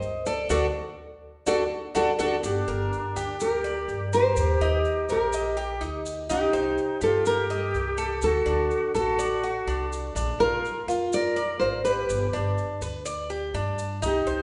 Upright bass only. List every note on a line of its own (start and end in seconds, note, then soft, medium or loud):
0.02 0.48 C#2 medium
0.50 0.68 D2 loud
1.46 1.65 D2 medium
1.95 2.13 D2 medium
2.19 2.37 D2 medium
2.44 2.67 G1 medium
2.68 2.91 G1 medium
3.16 3.85 D2 medium
3.88 4.34 G2 medium
4.37 4.60 D#2 medium
4.61 4.84 D#2 medium
5.09 5.78 A#1 medium
5.81 6.27 D2 medium
6.30 6.52 C2 medium
6.53 6.77 C2 medium
7.02 7.71 G2 medium
7.74 8.20 C2 medium
8.23 8.46 D2 loud
8.46 8.70 D2 medium
8.94 9.64 A1 medium
9.67 10.13 C2 medium
10.15 10.38 A#1 loud
10.39 10.63 A#1 medium
10.87 11.57 F2 medium
11.60 12.07 G#1 medium
12.09 12.32 G1 loud
12.33 12.56 G1 medium
12.81 13.50 D2 medium
13.54 14.00 G2 medium
14.02 14.26 C2 loud
14.27 14.42 C2 medium